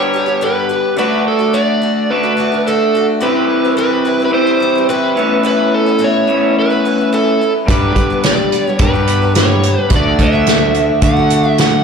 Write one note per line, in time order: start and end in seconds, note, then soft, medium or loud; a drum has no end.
0.00 0.95 G2 medium
0.00 0.95 D3 medium
0.00 0.96 G3 medium
0.00 0.12 G3 soft
0.00 0.96 B3 medium
0.00 0.13 B3 soft
0.00 0.97 D4 medium
0.00 0.15 D4 soft
0.00 0.97 G4 medium
0.00 0.14 G4 soft
0.00 0.44 C#5 medium
0.13 0.27 G3 medium
0.13 0.27 B3 medium
0.13 0.26 D4 medium
0.13 0.25 G4 medium
0.26 0.41 G3 soft
0.26 0.41 B3 soft
0.26 0.42 D4 soft
0.26 0.41 G4 medium
0.41 0.70 G2 medium
0.41 0.70 D3 medium
0.41 0.68 G3 medium
0.41 0.68 B3 medium
0.41 0.69 D4 medium
0.41 0.70 G4 medium
0.41 0.98 B4 medium
0.69 0.96 G3 medium
0.69 0.98 B3 medium
0.69 0.98 D4 medium
0.69 0.98 G4 medium
0.96 2.07 D3 medium
0.96 1.39 D3 medium
0.96 2.08 A3 medium
0.96 1.39 A3 medium
0.96 2.08 D4 medium
0.96 1.39 D4 medium
0.96 1.38 F#4 medium
0.96 2.09 F#4 medium
0.96 1.27 B4 medium
1.28 1.56 A4 medium
1.39 1.53 A3 soft
1.39 1.53 D4 soft
1.39 1.53 F#4 medium
1.53 1.80 D3 medium
1.53 1.81 A3 medium
1.53 1.82 D4 medium
1.53 1.82 F#4 medium
1.53 2.12 D5 medium
1.82 2.24 D3 medium
1.82 2.24 A3 medium
1.82 2.23 D4 medium
1.82 2.22 F#4 medium
2.10 3.20 D3 medium
2.10 3.21 A3 medium
2.10 3.21 D4 medium
2.10 3.21 F#4 medium
2.10 2.68 B4 medium
2.23 2.37 A3 soft
2.23 2.38 D4 soft
2.23 2.38 F#4 soft
2.37 2.51 D3 medium
2.37 2.52 A3 medium
2.37 2.52 D4 medium
2.37 2.51 F#4 medium
2.52 2.67 A3 soft
2.52 2.67 D4 soft
2.52 2.66 F#4 soft
2.67 2.94 D3 medium
2.67 2.94 A3 medium
2.67 2.95 D4 medium
2.67 2.95 F#4 medium
2.67 3.06 A4 medium
2.95 3.21 D3 medium
2.95 3.21 A3 medium
2.95 3.22 D4 medium
2.95 3.21 F#4 medium
3.20 3.63 C3 medium
3.20 4.30 C3 medium
3.20 3.63 E3 medium
3.20 4.32 E3 medium
3.20 3.64 G3 medium
3.20 4.31 G3 medium
3.20 3.64 C4 medium
3.20 4.32 C4 medium
3.20 3.63 E4 medium
3.20 4.33 E4 loud
3.20 3.77 B4 medium
3.65 3.77 G3 soft
3.65 3.77 C4 soft
3.65 3.77 E4 medium
3.77 4.05 C3 medium
3.77 4.04 E3 medium
3.77 4.04 G3 medium
3.77 4.05 C4 medium
3.77 4.06 E4 medium
3.77 4.24 B4 medium
4.05 4.19 E3 medium
4.05 4.19 G3 medium
4.05 4.20 C4 medium
4.05 4.19 E4 medium
4.20 4.47 G3 soft
4.20 4.46 C4 soft
4.20 4.45 E4 soft
4.25 4.33 B4 medium
4.31 5.14 C3 medium
4.31 5.15 E3 medium
4.31 5.15 G3 medium
4.31 5.15 C4 medium
4.31 5.16 E4 medium
4.31 4.89 C5 medium
4.47 4.61 G3 soft
4.47 4.61 C4 soft
4.47 4.61 E4 soft
4.60 4.75 E3 medium
4.60 4.76 G3 medium
4.60 4.76 C4 medium
4.60 4.74 E4 medium
4.75 4.89 G3 soft
4.75 4.89 C4 soft
4.75 4.89 E4 medium
4.89 5.17 C3 medium
4.89 5.16 E3 medium
4.89 5.17 G3 medium
4.89 5.17 C4 medium
4.89 5.18 E4 medium
4.89 5.45 B4 medium
5.16 6.26 A2 medium
5.16 6.26 E3 medium
5.16 5.43 E3 medium
5.16 5.43 B3 medium
5.16 6.29 B3 medium
5.16 6.27 C#4 medium
5.16 5.44 C#4 medium
5.16 6.26 E4 medium
5.16 5.45 E4 medium
5.43 5.86 A2 medium
5.43 5.86 E3 medium
5.43 5.87 B3 medium
5.43 5.87 C#4 medium
5.43 5.85 E4 medium
5.43 5.74 B4 medium
5.74 6.02 A4 medium
5.86 5.98 B3 soft
5.86 5.99 C#4 soft
5.86 6.00 E4 medium
5.98 6.28 A2 medium
5.98 6.26 E3 medium
5.98 6.27 B3 medium
5.98 6.28 C#4 medium
5.98 6.29 E4 medium
6.04 6.59 C#5 medium
6.27 7.39 A2 medium
6.27 6.70 E3 medium
6.27 7.39 E3 medium
6.27 6.70 B3 medium
6.27 7.39 B3 medium
6.27 7.38 C#4 medium
6.27 6.70 C#4 medium
6.27 7.38 E4 medium
6.27 6.69 E4 medium
6.59 7.15 B4 medium
6.70 6.85 B3 soft
6.70 6.85 C#4 soft
6.70 6.84 E4 soft
6.85 6.99 E3 medium
6.85 6.99 B3 medium
6.85 6.99 C#4 medium
6.85 6.97 E4 medium
6.98 7.12 B3 soft
6.98 7.13 C#4 soft
6.98 7.12 E4 medium
7.13 7.40 A2 medium
7.13 7.40 E3 medium
7.13 7.41 B3 medium
7.13 7.41 C#4 medium
7.13 7.41 E4 medium
7.13 7.52 A4 medium
7.41 7.69 E3 medium
7.41 7.69 B3 medium
7.41 7.69 C#4 medium
7.41 7.70 E4 medium
7.66 8.77 G2 medium
7.66 7.92 G2 medium
7.66 8.11 G2 medium
7.66 8.77 D3 medium
7.66 8.77 G3 medium
7.66 8.78 B3 medium
7.66 8.80 D4 medium
7.66 8.78 G4 medium
7.66 kick loud
7.66 closed hi-hat medium
7.70 8.11 D3 medium
7.70 8.11 G3 medium
7.70 8.11 B3 medium
7.70 8.09 D4 medium
7.70 8.09 G4 medium
7.70 8.21 B4 medium
7.96 8.67 G3 medium
7.96 kick medium
7.96 closed hi-hat medium
8.10 8.24 G3 soft
8.10 8.23 B3 soft
8.10 8.24 D4 soft
8.10 8.24 G4 medium
8.23 8.52 G2 medium
8.23 8.52 D3 medium
8.23 8.52 G3 medium
8.23 8.52 B3 medium
8.23 8.52 D4 medium
8.23 8.53 G4 medium
8.23 8.66 D5 medium
8.23 snare loud
8.23 closed hi-hat medium
8.52 8.66 G3 medium
8.52 8.67 B3 medium
8.52 8.67 D4 medium
8.52 8.66 G4 medium
8.52 closed hi-hat medium
8.66 8.95 G3 soft
8.66 8.94 B3 soft
8.66 8.94 D4 soft
8.66 8.92 G4 medium
8.66 8.82 C#5 medium
8.78 9.89 G2 medium
8.78 9.75 G2 medium
8.78 9.88 D3 medium
8.78 9.89 G3 medium
8.78 9.89 B3 medium
8.78 9.89 D4 medium
8.78 9.90 G4 medium
8.78 9.33 B4 medium
8.78 kick loud
8.78 closed hi-hat medium
8.94 9.06 G3 soft
8.94 9.08 B3 soft
8.94 9.08 D4 soft
8.94 9.07 G4 medium
9.07 9.21 G3 medium
9.07 9.22 B3 medium
9.07 9.21 D4 medium
9.07 9.20 G4 medium
9.07 closed hi-hat medium
9.22 9.35 G3 soft
9.22 9.35 B3 soft
9.22 9.36 D4 soft
9.22 9.35 G4 medium
9.35 9.63 G2 medium
9.35 9.64 D3 medium
9.35 9.63 G3 medium
9.35 9.64 B3 medium
9.35 9.64 D4 medium
9.35 9.64 G4 medium
9.35 9.82 C#5 medium
9.35 snare loud
9.35 closed hi-hat medium
9.63 9.91 G3 medium
9.63 9.92 B3 medium
9.63 9.91 D4 medium
9.63 9.93 G4 medium
9.63 closed hi-hat medium
9.82 9.93 B4 medium
9.89 10.15 D2 medium
9.89 11.00 D3 medium
9.89 10.33 D3 medium
9.89 11.01 A3 medium
9.89 10.34 A3 medium
9.89 11.01 D4 loud
9.89 10.34 D4 medium
9.89 11.01 F#4 medium
9.89 kick loud
9.89 closed hi-hat medium
9.93 10.32 F#4 medium
9.93 10.22 D5 medium
10.19 10.91 D2 medium
10.19 kick medium
10.19 closed hi-hat medium
10.23 11.01 E5 loud
10.33 10.47 A3 soft
10.33 10.48 D4 soft
10.33 10.47 F#4 soft
10.46 10.74 D3 medium
10.46 10.75 A3 medium
10.46 10.76 D4 medium
10.46 10.76 F#4 medium
10.46 snare loud
10.46 closed hi-hat medium
10.74 11.17 D3 medium
10.74 11.18 A3 medium
10.74 11.18 D4 medium
10.74 11.16 F#4 medium
10.74 closed hi-hat medium
11.01 11.84 D3 medium
11.01 11.84 A3 medium
11.01 11.84 D4 medium
11.01 11.84 F#4 medium
11.01 11.49 F#5 loud
11.01 kick loud
11.01 closed hi-hat medium
11.17 11.30 A3 soft
11.17 11.31 D4 soft
11.17 11.31 F#4 medium
11.30 11.45 D3 medium
11.30 11.44 A3 medium
11.30 11.43 D4 medium
11.30 11.42 F#4 medium
11.30 closed hi-hat medium
11.43 11.58 A3 soft
11.43 11.58 D4 soft
11.43 11.58 F#4 medium
11.49 11.60 E5 loud
11.58 11.84 D3 medium
11.58 11.84 A3 medium
11.58 11.84 D4 medium
11.58 11.84 F#4 medium
11.58 11.84 F#5 loud
11.58 snare loud
11.58 closed hi-hat medium